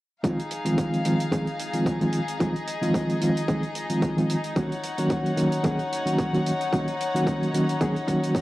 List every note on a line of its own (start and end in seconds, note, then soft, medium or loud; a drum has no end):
0.23 0.36 D#3 medium
0.23 0.36 F3 medium
0.23 0.36 G#3 medium
0.23 0.36 C4 medium
0.23 8.41 D#4 medium
0.23 0.37 F4 medium
0.23 4.53 G#4 medium
0.23 2.38 F5 medium
0.23 kick loud
0.23 closed hi-hat medium
0.40 closed hi-hat soft
0.51 closed hi-hat medium
0.65 1.02 D#3 medium
0.65 1.02 F3 medium
0.65 1.02 G#3 medium
0.65 1.02 C4 medium
0.65 1.02 F4 medium
0.65 closed hi-hat medium
0.78 kick loud
0.78 closed hi-hat medium
0.94 closed hi-hat soft
1.05 1.24 D#3 medium
1.05 1.24 F3 medium
1.05 1.24 G#3 medium
1.05 1.24 C4 medium
1.05 1.24 F4 medium
1.05 closed hi-hat medium
1.20 closed hi-hat medium
1.31 1.44 D#3 medium
1.31 1.44 F3 medium
1.31 1.44 G#3 medium
1.31 1.45 C4 medium
1.31 1.45 G#4 medium
1.31 kick loud
1.31 closed hi-hat medium
1.47 closed hi-hat soft
1.60 closed hi-hat medium
1.73 1.97 D#3 medium
1.73 1.97 F3 medium
1.73 1.98 G#3 medium
1.73 1.98 C4 medium
1.73 1.98 F4 medium
1.73 closed hi-hat medium
1.86 kick loud
1.86 closed hi-hat medium
2.01 2.18 D#3 medium
2.01 2.18 F3 medium
2.01 2.18 G#3 medium
2.01 2.18 C4 medium
2.01 2.18 F4 medium
2.01 closed hi-hat soft
2.13 closed hi-hat medium
2.28 closed hi-hat medium
2.40 2.52 D#3 medium
2.40 2.52 F3 medium
2.40 2.52 G#3 medium
2.40 2.53 C4 medium
2.40 2.53 F4 medium
2.40 4.55 D#5 medium
2.40 kick loud
2.40 closed hi-hat medium
2.56 closed hi-hat soft
2.68 closed hi-hat medium
2.82 3.18 D#3 medium
2.82 3.18 F3 medium
2.82 3.18 G#3 medium
2.82 3.18 C4 medium
2.82 3.19 F4 medium
2.82 closed hi-hat medium
2.94 kick loud
2.94 closed hi-hat medium
3.10 closed hi-hat soft
3.21 3.40 D#3 medium
3.21 3.40 F3 medium
3.21 3.40 G#3 medium
3.21 3.40 C4 medium
3.21 3.40 F4 medium
3.21 closed hi-hat medium
3.37 closed hi-hat medium
3.48 3.60 D#3 medium
3.48 3.60 F3 medium
3.48 3.61 G#3 medium
3.48 3.61 C4 medium
3.48 3.61 G#4 loud
3.48 kick loud
3.48 closed hi-hat medium
3.63 closed hi-hat soft
3.75 closed hi-hat loud
3.90 4.14 D#3 medium
3.90 4.14 F3 medium
3.90 4.14 G#3 medium
3.90 4.14 C4 medium
3.90 4.14 F4 medium
3.90 closed hi-hat medium
4.02 kick loud
4.02 closed hi-hat medium
4.17 4.34 D#3 medium
4.17 4.34 F3 medium
4.17 4.34 G#3 medium
4.17 4.34 C4 medium
4.17 4.34 F4 medium
4.17 closed hi-hat soft
4.30 closed hi-hat medium
4.44 closed hi-hat medium
4.56 4.68 D#3 medium
4.56 4.69 F#3 medium
4.56 4.69 A#3 medium
4.56 4.69 C#4 medium
4.56 4.69 F#4 medium
4.56 8.41 C#5 medium
4.56 8.41 F#5 medium
4.56 kick loud
4.56 closed hi-hat medium
4.72 closed hi-hat soft
4.84 closed hi-hat medium
4.98 5.35 D#3 medium
4.98 5.35 F#3 medium
4.98 5.35 A#3 medium
4.98 5.35 C#4 medium
4.98 5.35 F#4 medium
4.98 closed hi-hat medium
5.10 kick loud
5.10 closed hi-hat medium
5.26 closed hi-hat soft
5.37 5.56 D#3 medium
5.37 5.56 F#3 medium
5.37 5.56 A#3 medium
5.37 5.56 C#4 medium
5.37 5.56 F#4 medium
5.37 closed hi-hat medium
5.52 closed hi-hat medium
5.64 5.76 D#3 medium
5.64 5.76 F#3 medium
5.64 5.77 A#3 medium
5.64 5.77 C#4 medium
5.64 5.77 G#4 medium
5.64 kick loud
5.64 closed hi-hat medium
5.79 closed hi-hat soft
5.93 closed hi-hat medium
6.06 6.30 D#3 medium
6.06 6.30 F#3 medium
6.06 6.30 A#3 medium
6.06 6.30 C#4 medium
6.06 6.30 F#4 medium
6.06 closed hi-hat medium
6.18 kick loud
6.18 closed hi-hat medium
6.33 6.50 D#3 medium
6.33 6.50 F#3 medium
6.33 6.50 A#3 medium
6.33 6.51 C#4 medium
6.33 6.51 F#4 medium
6.33 closed hi-hat soft
6.46 closed hi-hat medium
6.61 closed hi-hat medium
6.73 6.85 D#3 medium
6.73 6.85 F#3 medium
6.73 6.85 A#3 medium
6.73 6.85 C#4 medium
6.73 6.85 F#4 medium
6.73 kick loud
6.73 closed hi-hat medium
6.88 closed hi-hat soft
7.01 closed hi-hat medium
7.15 7.51 D#3 medium
7.15 7.51 F#3 medium
7.15 7.51 A#3 medium
7.15 7.51 C#4 medium
7.15 7.51 F#4 medium
7.15 closed hi-hat medium
7.27 kick loud
7.27 closed hi-hat medium
7.43 closed hi-hat soft
7.54 7.72 D#3 medium
7.54 7.73 F#3 medium
7.54 7.73 A#3 medium
7.54 7.73 C#4 medium
7.54 7.73 F#4 medium
7.54 closed hi-hat medium
7.69 closed hi-hat medium
7.81 7.93 D#3 medium
7.81 7.93 F#3 medium
7.81 7.93 A#3 medium
7.81 7.94 C#4 medium
7.81 7.94 G#4 loud
7.81 kick loud
7.81 closed hi-hat medium
7.96 closed hi-hat soft
8.08 8.41 D#3 medium
8.08 8.41 F#3 medium
8.08 8.41 A#3 medium
8.08 8.41 C#4 medium
8.08 8.41 F#4 medium
8.08 kick medium
8.08 closed hi-hat medium
8.24 closed hi-hat medium
8.35 kick loud
8.35 closed hi-hat medium